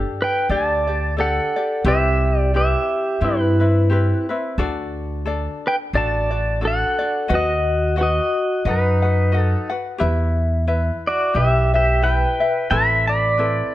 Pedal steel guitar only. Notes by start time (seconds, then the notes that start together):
0.22 B4 G5
0.50 D5 A5
1.20 A4 F#5
1.87 G4 E5
2.40 D5
2.56 G4 E5
3.24 E4 B4
5.67 B4 G5
5.95 D5 A5
6.65 A4 F#5
7.34 F#4 D#5
8.01 F#4 D#5
8.69 D#4 B4
9.39 A4
11.07 F#4 D5
11.36 G4 E5
11.75 G4 E5
12.04 B4 G5
12.71 E5 B5
13.07 D5 B5